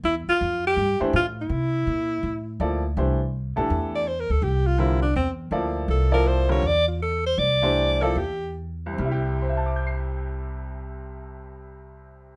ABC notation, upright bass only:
X:1
M:4/4
L:1/8
Q:"Swing" 1/4=164
K:Aphr
V:1 name="Upright bass" clef=bass
E,, z F,,2 G,, z A,,2 | C,2 B,,2 A,,2 D,,2 | C,,3 B,,, E,,3 D,, | C,,4 E,,2 D,,2 |
C,,4 E,,4 | C,,4 E,,4 | C,,8- | C,,8 |]